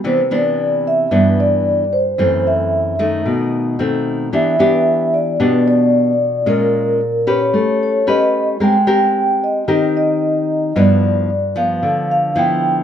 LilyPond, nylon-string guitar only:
\new Staff \with { instrumentName = "Nylon-string guitar" } { \time 4/4 \key c \major \tempo 4 = 112 << { <e b d'>8 <e b d'>4. <e b d'>4. r8 | <e a c'>4. <ees a>4. <dis a c'>4 | <b d' g'>8 <b d' g'>4. <b d' g'>4. r8 | <aes des' f'>4 r8 <des' g' b'>4. <cis' g' b'>4 |
<c' g' bes'>8 <c' g' bes'>4. <c' g' bes'>2 | <f b e'>4 r8 <f b>4. <f b e'>4 | } \\ { c2 g,2 | fis,2 b,2 | e2 b,2 | bes,2 a2 |
aes2 ees2 | g,2 d2 | } >> }